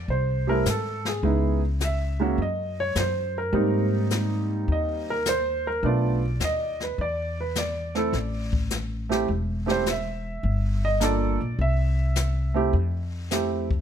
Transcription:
0.08 0.62 C2 medium
0.08 0.48 C5 medium
0.08 brush sweep soft
0.08 kick soft
0.47 0.64 G3 medium
0.47 0.64 A3 medium
0.47 0.64 C4 medium
0.47 0.65 E4 medium
0.47 0.66 A#4 medium
0.65 1.19 G#2 medium
0.65 snare medium
0.65 hi-hat pedal medium
0.70 1.06 A4 medium
1.05 1.60 G#4 medium
1.05 snare soft
1.23 2.34 C#2 medium
1.23 1.59 G#3 medium
1.23 1.59 B3 medium
1.23 1.60 D#4 soft
1.23 1.60 E4 medium
1.23 brush sweep soft
1.23 kick soft
1.80 snare medium
1.80 hi-hat pedal soft
1.85 2.37 E5 medium
2.20 2.36 G#3 medium
2.20 2.37 A#3 medium
2.20 2.37 C#4 medium
2.20 2.37 F#4 medium
2.38 2.92 F#2 medium
2.38 brush sweep soft
2.38 kick soft
2.42 2.79 D#5 medium
2.80 2.96 C#5 medium
2.95 3.49 F#2 medium
2.95 3.36 C5 medium
2.95 snare medium
2.95 hi-hat pedal soft
3.38 3.90 A#4 medium
3.53 4.64 G#2 medium
3.53 5.15 G3 medium
3.53 5.15 A#3 medium
3.53 5.15 C4 medium
3.53 5.16 D#4 medium
3.53 brush sweep soft
3.53 kick soft
4.10 snare medium
4.10 hi-hat pedal soft
4.68 5.79 D#2 medium
4.68 brush sweep soft
4.68 kick soft
4.72 5.09 D#5 medium
5.10 5.27 A#4 medium
5.25 5.66 C5 medium
5.25 snare medium
5.25 hi-hat pedal medium
5.67 5.84 A#4 medium
5.83 6.37 B1 medium
5.83 6.19 A3 medium
5.83 6.19 B3 medium
5.83 6.20 D4 medium
5.83 6.20 F4 medium
5.83 6.78 D5 medium
5.83 brush sweep soft
5.83 kick soft
6.40 6.94 D#2 medium
6.40 snare soft
6.40 hi-hat pedal medium
6.44 6.81 D#5 medium
6.80 6.99 B4 medium
6.80 snare soft
6.98 8.09 E2 medium
6.98 7.38 D5 medium
6.98 brush sweep soft
6.98 kick soft
7.41 7.57 B4 medium
7.55 8.50 D5 medium
7.55 snare medium
7.55 hi-hat pedal medium
7.95 8.11 A3 medium
7.95 8.12 C4 medium
7.95 8.12 E4 medium
7.95 8.12 A4 medium
7.95 snare soft
8.13 9.24 A1 medium
8.13 brush sweep medium
8.13 kick soft
8.13 snare soft
8.53 kick medium
8.70 snare medium
8.70 hi-hat pedal medium
9.09 9.26 A3 medium
9.09 9.26 C4 medium
9.09 9.27 E4 medium
9.09 9.27 G4 medium
9.09 snare soft
9.28 10.39 E1 medium
9.28 brush sweep soft
9.28 kick soft
9.66 9.83 A3 medium
9.66 9.84 C4 medium
9.66 9.84 E4 medium
9.66 9.84 G4 medium
9.66 snare soft
9.71 9.87 C5 medium
9.86 snare medium
9.86 hi-hat pedal soft
9.91 10.81 E5 medium
10.43 11.36 G1 medium
10.43 brush sweep soft
10.43 kick soft
10.85 11.01 D#5 medium
11.00 11.36 A#3 medium
11.00 11.37 D4 medium
11.00 11.37 F4 medium
11.00 11.37 A4 medium
11.00 11.56 D5 medium
11.00 snare medium
11.00 hi-hat pedal soft
11.40 11.57 A#1 medium
11.59 12.70 C2 medium
11.59 12.53 E5 medium
11.59 brush sweep soft
11.59 kick soft
12.16 snare medium
12.16 hi-hat pedal medium
12.54 12.71 A3 medium
12.54 12.71 C4 medium
12.54 12.72 E4 medium
12.54 12.72 G4 medium
12.73 13.81 F2 medium
12.73 brush sweep soft
12.73 kick soft
13.31 13.67 A3 medium
13.31 13.67 C4 soft
13.31 13.67 E4 soft
13.31 13.67 G4 medium
13.31 snare medium
13.31 hi-hat pedal medium
13.71 kick soft

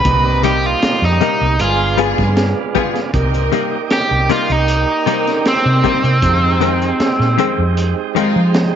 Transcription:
0.00 0.43 B4 loud
0.05 0.73 C2 medium
0.05 1.57 A#2 medium
0.05 1.56 G3 medium
0.05 0.82 C4 medium
0.05 1.57 D#4 medium
0.05 1.57 D5 medium
0.05 0.83 A#5 medium
0.05 kick loud
0.05 closed hi-hat medium
0.43 0.68 C3 medium
0.43 0.68 G3 medium
0.43 0.69 A#3 medium
0.43 0.69 D#4 medium
0.43 0.66 G4 medium
0.43 closed hi-hat medium
0.66 1.03 F4 medium
0.82 muted fingered electric bass stroke soft
0.82 snare loud
0.82 closed hi-hat medium
1.02 1.19 F2 medium
1.02 1.59 D#4 medium
1.02 snare soft
1.21 1.45 C3 medium
1.21 1.45 G3 medium
1.21 1.46 A#3 loud
1.21 1.46 D#4 medium
1.21 closed hi-hat medium
1.41 1.57 C2 medium
1.59 2.12 G1 loud
1.59 3.11 G#3 medium
1.59 1.91 B3 medium
1.59 3.11 B3 medium
1.59 3.11 D4 medium
1.59 1.91 F4 medium
1.59 3.11 F4 medium
1.59 1.98 F4 loud
1.59 1.91 G#4 medium
1.59 closed hi-hat medium
1.98 2.22 G3 medium
1.98 2.37 B3 medium
1.98 2.22 B3 medium
1.98 2.37 F4 medium
1.98 2.23 F4 medium
1.98 2.37 G#4 medium
1.98 2.23 G#4 medium
1.98 closed hi-hat medium
2.18 2.52 G2 medium
2.18 kick medium
2.18 snare soft
2.37 snare loud
2.37 closed hi-hat medium
2.75 2.99 G3 loud
2.75 2.95 B3 medium
2.75 3.00 B3 loud
2.75 2.96 F4 medium
2.75 3.00 F4 loud
2.75 2.96 G#4 medium
2.75 3.00 G#4 medium
2.75 kick medium
2.75 closed hi-hat medium
2.95 snare soft
2.95 closed hi-hat soft
3.13 3.48 C2 medium
3.13 6.18 A#3 medium
3.13 3.91 C4 medium
3.13 6.19 D#4 medium
3.13 6.19 G4 medium
3.13 3.91 A#4 medium
3.13 6.19 D5 medium
3.13 kick loud
3.13 closed hi-hat medium
3.34 closed hi-hat soft
3.52 3.76 C3 medium
3.52 3.77 G3 medium
3.52 3.77 A#3 medium
3.52 3.77 D#4 medium
3.52 closed hi-hat medium
3.90 4.29 G4 medium
3.90 snare loud
3.90 closed hi-hat medium
4.11 4.27 C2 medium
4.29 4.54 C3 medium
4.29 4.54 G3 medium
4.29 4.54 A#3 medium
4.29 4.55 D#4 medium
4.29 4.52 F4 medium
4.29 closed hi-hat medium
4.50 4.84 C2 medium
4.50 5.44 D#4 medium
4.50 closed hi-hat soft
4.68 closed hi-hat medium
5.06 5.31 C3 medium
5.06 5.31 G3 medium
5.06 5.31 A#3 medium
5.06 5.45 C4 medium
5.06 5.45 D#4 medium
5.06 5.32 D#4 medium
5.06 5.46 A#4 medium
5.06 closed hi-hat medium
5.27 snare soft
5.27 closed hi-hat soft
5.45 7.74 C4 medium
5.45 snare loud
5.45 closed hi-hat medium
5.66 5.82 C3 medium
5.84 6.08 C3 medium
5.84 6.08 G3 medium
5.84 6.09 A#3 medium
5.84 6.04 C4 medium
5.84 6.04 D#4 medium
5.84 6.09 D#4 medium
5.84 6.04 A#4 medium
5.84 kick medium
5.84 closed hi-hat medium
6.04 6.20 C3 loud
6.04 closed hi-hat soft
6.22 6.91 F2 medium
6.22 8.76 G#3 medium
6.22 8.76 C4 soft
6.22 6.99 D#4 medium
6.22 8.76 D#4 medium
6.22 7.00 F4 medium
6.22 8.76 G4 medium
6.22 kick loud
6.22 closed hi-hat medium
6.61 6.85 F2 medium
6.61 6.85 D#3 medium
6.61 6.86 G#3 medium
6.61 6.86 C4 medium
6.61 closed hi-hat medium
6.82 closed hi-hat soft
7.00 muted fingered electric bass stroke soft
7.00 snare loud
7.00 closed hi-hat medium
7.19 7.36 A#2 medium
7.19 snare soft
7.38 7.62 F2 medium
7.38 7.62 D#3 medium
7.38 7.63 G#3 medium
7.38 7.63 C4 loud
7.38 closed hi-hat medium
7.58 7.92 F2 medium
7.77 closed hi-hat medium
8.15 8.39 F2 medium
8.15 8.40 D#3 medium
8.15 8.54 G#3 medium
8.15 8.40 G#3 loud
8.15 8.40 C4 medium
8.15 8.54 D#4 medium
8.15 8.54 F4 medium
8.15 closed hi-hat medium
8.36 8.70 F3 medium
8.54 snare loud
8.54 closed hi-hat medium

